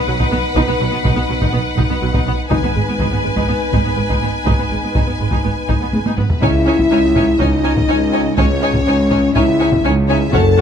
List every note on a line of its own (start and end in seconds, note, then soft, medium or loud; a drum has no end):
0.00 2.47 B3 medium
0.00 2.50 D#4 medium
0.00 2.50 B4 medium
0.00 2.47 F#5 medium
0.07 0.13 B1 soft
0.07 0.12 B2 soft
0.07 0.12 F#3 soft
0.19 0.24 B2 medium
0.19 0.24 D#4 medium
0.19 taiko medium
0.32 0.37 B1 soft
0.32 0.37 B2 soft
0.32 0.36 B3 soft
0.55 0.61 B1 medium
0.55 0.61 B2 medium
0.55 0.60 D#4 medium
0.55 taiko medium
0.68 0.73 B2 soft
0.68 0.73 B3 soft
0.80 0.86 B1 soft
0.80 0.85 B2 soft
0.80 0.85 F#3 soft
0.92 0.98 B2 soft
0.92 0.97 B3 soft
1.04 1.10 B1 medium
1.04 1.09 B2 medium
1.04 1.09 D#4 medium
1.04 taiko medium
1.16 1.22 B2 soft
1.16 1.21 B3 soft
1.28 1.34 B1 soft
1.28 1.34 B2 soft
1.28 1.33 F#3 soft
1.41 1.46 B2 medium
1.41 1.46 D#4 medium
1.41 taiko medium
1.53 1.58 B1 soft
1.53 1.58 B2 soft
1.53 1.58 B3 soft
1.77 1.83 B1 medium
1.77 1.83 B2 medium
1.77 1.82 D#4 soft
1.77 taiko medium
1.90 1.95 B2 soft
1.90 1.95 B3 soft
2.02 2.08 B1 soft
2.02 2.07 B2 soft
2.02 2.07 F#3 soft
2.13 2.19 B2 medium
2.13 2.19 D#4 medium
2.13 taiko medium
2.27 2.32 B1 soft
2.27 2.32 B2 soft
2.27 2.32 B3 soft
2.50 2.56 G#1 soft
2.50 2.56 G#2 medium
2.50 3.21 G#2 soft
2.50 6.01 B3 soft
2.50 2.55 D#4 medium
2.50 6.01 D#4 soft
2.50 6.18 B4 medium
2.50 6.13 G#5 soft
2.50 taiko medium
2.63 2.68 G#2 soft
2.63 2.68 B3 soft
2.75 2.80 G#1 soft
2.75 2.80 G#2 soft
2.75 2.80 G#3 soft
2.88 2.93 G#2 soft
2.88 2.93 B3 soft
3.00 3.05 G#1 soft
3.00 3.05 G#2 soft
3.00 3.05 D#4 soft
3.00 taiko medium
3.12 3.17 G#2 soft
3.12 3.17 B3 soft
3.23 3.29 G#1 soft
3.23 3.30 G#2 soft
3.23 3.28 G#3 soft
3.36 3.42 G#2 medium
3.36 3.41 D#4 medium
3.36 taiko medium
3.48 3.54 G#1 soft
3.48 3.54 G#2 soft
3.48 3.53 B3 soft
3.73 3.79 G#1 soft
3.73 3.78 G#2 medium
3.73 3.78 D#4 soft
3.73 taiko medium
3.85 3.91 G#2 soft
3.85 3.90 B3 soft
3.97 4.02 G#1 soft
3.97 4.02 G#2 soft
3.97 4.02 G#3 soft
4.10 4.15 G#2 soft
4.10 4.15 D#4 soft
4.10 taiko medium
4.22 4.27 G#1 soft
4.22 4.27 G#2 soft
4.22 4.28 B3 soft
4.46 4.52 G#1 soft
4.46 4.52 G#2 soft
4.46 4.51 D#4 soft
4.46 taiko medium
4.59 4.64 G#2 soft
4.59 4.64 B3 soft
4.71 4.76 G#1 soft
4.71 4.76 G#2 soft
4.71 4.76 G#3 soft
4.84 4.88 G#2 soft
4.84 4.88 B3 soft
4.95 5.01 G#1 soft
4.95 5.01 G#2 soft
4.95 5.01 D#4 soft
4.95 taiko medium
5.07 5.13 G#2 soft
5.07 5.12 B3 soft
5.20 5.25 G#1 soft
5.20 5.24 G#2 soft
5.20 5.25 G#3 soft
5.32 5.37 G#2 soft
5.32 5.37 D#4 soft
5.32 taiko medium
5.44 5.50 G#1 soft
5.44 5.49 G#2 soft
5.44 5.49 B3 soft
5.68 5.74 G#1 soft
5.68 5.74 G#2 soft
5.68 5.73 D#4 soft
5.68 taiko medium
5.81 5.86 G#2 soft
5.81 5.86 B3 soft
5.93 5.98 G#1 soft
5.93 5.98 G#2 soft
5.93 5.99 G#3 soft
5.93 taiko high medium
6.05 6.10 G#2 soft
6.05 6.11 D#4 soft
6.05 taiko high medium
6.17 6.23 G#1 soft
6.17 6.22 G#2 soft
6.17 6.23 B3 soft
6.17 6.41 B3 medium
6.17 6.40 B4 soft
6.17 taiko low-mid medium
6.30 taiko low medium
6.42 6.85 C#2 medium
6.42 6.50 C#4 soft
6.42 6.50 D#4 soft
6.42 7.40 E4 medium
6.42 6.51 C#5 soft
6.42 7.40 E5 medium
6.42 6.51 G#5 soft
6.42 taiko medium
6.66 6.74 C#4 soft
6.66 6.75 D#4 soft
6.66 6.76 C#5 soft
6.66 6.76 G#5 soft
6.79 taiko medium
6.91 7.34 C#2 medium
6.91 6.99 C#4 soft
6.91 6.99 D#4 soft
6.91 6.99 C#5 soft
6.91 7.00 G#5 soft
7.15 7.23 C#4 soft
7.15 7.23 D#4 soft
7.15 7.24 C#5 soft
7.15 7.25 G#5 soft
7.15 taiko medium
7.40 7.83 C#2 medium
7.40 7.83 C#2 soft
7.40 7.48 C#4 soft
7.40 7.48 D#4 soft
7.40 8.37 D#4 medium
7.40 7.49 C#5 soft
7.40 8.38 D#5 medium
7.40 7.49 G#5 soft
7.40 taiko medium
7.64 7.72 C#4 soft
7.64 7.72 D#4 soft
7.64 7.72 C#5 soft
7.64 7.72 G#5 soft
7.77 taiko medium
7.88 8.32 C#2 medium
7.88 7.97 C#4 soft
7.88 7.96 D#4 soft
7.88 7.97 C#5 soft
7.88 7.97 G#5 soft
8.13 8.21 C#4 soft
8.13 8.21 D#4 soft
8.13 8.21 C#5 soft
8.13 8.21 G#5 soft
8.37 8.81 C#2 soft
8.37 8.81 C#2 medium
8.37 9.33 C#4 medium
8.37 8.46 C#4 medium
8.37 8.46 D#4 medium
8.37 8.45 C#5 soft
8.37 9.33 C#5 medium
8.37 8.45 G#5 medium
8.37 taiko medium
8.62 8.70 C#4 soft
8.62 8.70 D#4 soft
8.62 8.70 C#5 soft
8.62 8.71 G#5 soft
8.74 taiko medium
8.87 9.29 C#2 medium
8.87 9.30 C#2 medium
8.87 8.95 C#4 soft
8.87 8.95 D#4 soft
8.87 8.96 C#5 soft
8.87 8.95 G#5 soft
9.11 9.19 C#4 soft
9.11 9.19 D#4 soft
9.11 9.19 C#5 soft
9.11 9.20 G#5 soft
9.11 taiko medium
9.35 9.78 C#2 medium
9.35 9.43 C#4 medium
9.35 9.44 D#4 soft
9.35 9.84 E4 medium
9.35 9.43 C#5 soft
9.35 9.83 E5 medium
9.35 9.43 G#5 soft
9.35 taiko medium
9.60 9.68 C#4 soft
9.60 9.68 D#4 soft
9.60 9.68 C#5 soft
9.60 9.68 G#5 soft
9.72 taiko medium
9.84 10.27 C#2 medium
9.84 9.93 C#4 medium
9.84 9.93 D#4 soft
9.84 9.92 C#5 soft
9.84 9.93 G#5 soft
10.07 10.17 C#4 soft
10.07 10.17 D#4 soft
10.07 10.30 E4 medium
10.07 10.17 C#5 soft
10.07 10.31 E5 medium
10.07 10.17 G#5 soft
10.31 10.61 F#1 medium
10.31 10.61 F#2 medium
10.31 10.40 C#4 medium
10.31 10.40 F#4 medium
10.31 10.61 A4 medium
10.31 10.42 C#5 soft
10.31 10.42 F#5 soft
10.31 10.61 A5 medium
10.31 taiko medium
10.57 10.61 C#4 medium
10.57 10.61 F#4 soft
10.57 10.61 F#5 soft